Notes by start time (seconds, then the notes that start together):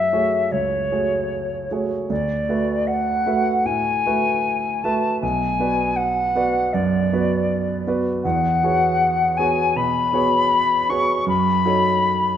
Already playing: F#2 A3 F#4 G#4 C#5 E5
0.12 A3 F#4 G#4 C#5
0.52 C#2 C#5
0.91 A3 F#4 G#4 C#5
1.71 A3 F#4 G#4 C#5
2.10 D2 D5
2.49 A3 F#4 B4 E5
2.87 F#5
3.26 A3 F#4 B4 E5
3.66 A2 G#5
4.06 A3 F#4 B4 E5
4.84 A3 F#4 B4 E5 A5
5.21 B1 G#5
5.59 B3 F#4 B4 D5
5.96 F#5
6.35 B3 F#4 B4 D5
6.73 F#2 D5
7.13 B3 F#4 B4 D5
7.87 B3 F#4 B4 D5
8.23 E2 F#5
8.63 B3 F#4 G#4 C#5
9.37 B3 F#4 G#4 C#5 G#5
9.76 B2 B5
10.13 B3 F#4 G#4 C#5
10.89 B3 F#4 G#4 C#5 C#6
11.26 F#2 B5
11.65 D#4 F#4 A4 C#5